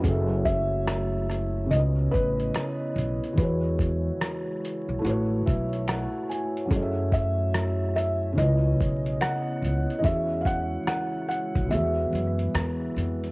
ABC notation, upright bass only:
X:1
M:4/4
L:1/16
Q:"Swing 16ths" 1/4=72
K:E
V:1 name="Upright bass" clef=bass
F,,,8 C,,2 A,,,2 z2 B,,, z | E,,4 z3 B,,, A,,,2 B,,,3 z3 | F,,8 C,,2 B,,,2 z2 C,, z | E,,4 z3 B,,, E,,2 F,,2 E,,2 =F,,2 |]